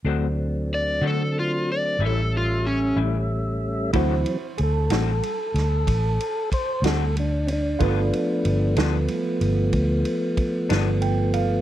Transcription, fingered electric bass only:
X:1
M:12/8
L:1/8
Q:3/8=62
K:G
V:1 name="Fingered electric bass" clef=bass
D,,3 D,3 A,,,3 A,,,3 | D,, z D,, A,,, z D,, A,,, z2 D,,3 | G,,, z G,,, D,, z G,,, D,, z2 G,,,3 |]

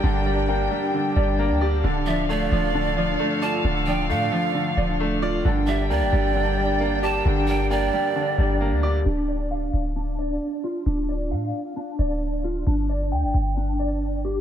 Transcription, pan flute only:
X:1
M:4/4
L:1/8
Q:1/4=133
K:Dm
V:1 name="Pan flute"
z8 | z e d4- d a | z g f4 z2 | z e d4- d a |
z g d4 z2 | z8 | z8 | z8 |]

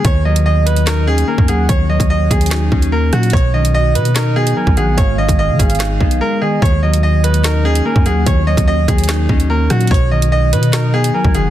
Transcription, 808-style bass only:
X:1
M:4/4
L:1/16
Q:1/4=146
K:Ebm
V:1 name="808-style bass" clef=bass
E,,12 z G,, E,,2 | E,,3 E,,3 E,,4 E,,4 B,,2 | =B,,,6 =B,,6 z B,,, _B,,,2 | A,,,3 A,,,2 E, A,,,4 C,,2 z4 |
E,,12 z G,, E,,2 | E,,3 E,,3 E,,4 E,,4 B,,2 | =B,,,6 =B,,6 z B,,, ^F,,,2 |]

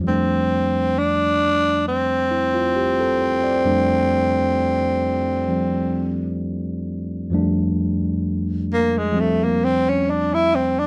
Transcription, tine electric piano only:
X:1
M:4/4
L:1/16
Q:"Swing" 1/4=66
K:F
V:1 name="Tine electric piano"
z8 z2 E F G A c d | z16 | z16 |]
V:2 name="Tine electric piano" clef=bass
[F,,F,G,A,D]16 | [F,,F,G,A,D]8 [F,G,C]8 | [F,,F,G,A,D]8 [F,G,C]8 |]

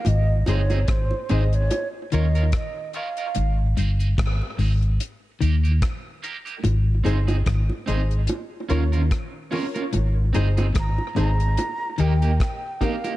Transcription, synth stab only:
X:1
M:4/4
L:1/16
Q:"Swing 16ths" 1/4=73
K:Ab
V:1 name="Synth stab"
z2 [EAc] z3 [EAc] z3 [FBd] z3 [FBd] z | z2 [EAc] z3 [EAc] z3 [EGB] z3 [EGB] z | z2 [EAc] z3 [EAc] z3 [FBd] z3 [FBd] z | z2 [EAc] z3 [EAc] z3 [EGB] z3 [EGB] z |]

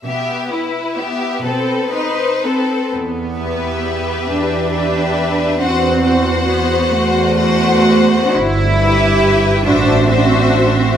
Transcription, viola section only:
X:1
M:6/8
L:1/8
Q:3/8=44
K:Em
V:1 name="Viola section"
B, E B, C ^D C | z G3 G2 | F F3 F2 | z G2 F F2 |]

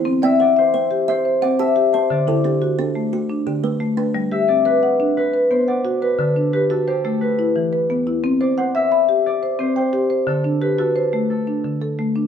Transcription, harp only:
X:1
M:12/8
L:1/8
Q:3/8=117
K:Dmix
V:1 name="Harp"
z e d c3 c2 d e2 c | d8- d2 z2 | z e d B3 B2 c d2 B | A2 B A G A B3 z3 |
z d c e3 d2 c c3 | A2 B A2 z A3 z3 |]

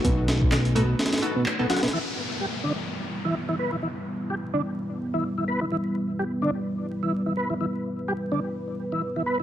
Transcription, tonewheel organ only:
X:1
M:4/4
L:1/16
Q:"Swing 16ths" 1/4=127
K:Em
V:1 name="Tonewheel organ" clef=bass
B,, z3 ^D, z A,, z4 B,, z B,, F, B,, | E, z3 G, z D, z4 E, z E, B, E, | E, z3 G, z D, z4 E, z E, B, E, | E, z3 G, z D, z4 E, z E, B, E, |
E, z3 G, z D, z4 E, z E, B, E, |]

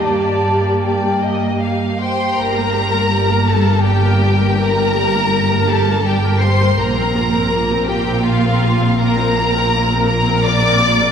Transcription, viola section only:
X:1
M:3/4
L:1/16
Q:1/4=82
K:Gm
V:1 name="Viola section"
[B,G]8- [B,G]3 z | [G,G] [B,B] [G,G] [B,B] [G,G] [B,B] [G,G] [B,B] [G,G] [B,B] [G,G] [B,B] | [G,G] [B,B] [G,G] [B,B] [G,G] [B,B] [G,G] [B,B] [G,G] [B,B] [G,G] [B,B] | [B,F] [CB] [B,F] [CB] [B,F] [CB] [B,F] [CB] [B,F] [CB] [B,F] [CB] |
[B,F] [CB] [B,F] [CB] [B,F] [CB] [B,F] [CB] [B,F] [CB] [B,F] [CB] |]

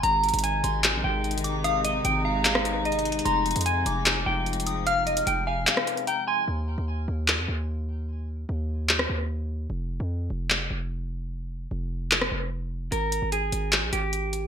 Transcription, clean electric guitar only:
X:1
M:4/4
L:1/8
Q:1/4=149
K:Ablyd
V:1 name="Clean electric guitar"
b2 a3 g3 | f e g f f2 e2 | b2 a3 g3 | f e g f f2 g a |
z8 | z8 | z8 | z8 |
B2 A3 G3 |]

